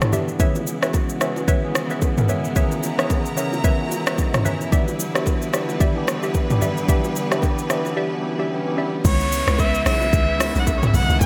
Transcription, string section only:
Already playing: D3 G3 B3 D4
0.40 C#3 G#3 B3 E4
2.56 A#5
4.72 D3 G3 B3 B4
9.04 C#3 E3 G#3 B3 E4

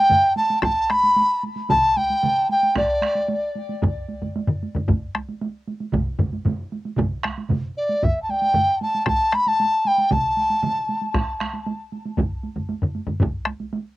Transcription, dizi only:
Already playing: G5
0.37 A5
0.63 A5
0.91 B5
1.70 A5
1.97 G5
2.51 G5
2.77 D5
7.77 D5
8.04 E5
8.22 A5
8.30 G5
8.82 A5
9.08 A5
9.35 B5
9.48 A5
9.87 G5
10.13 A5

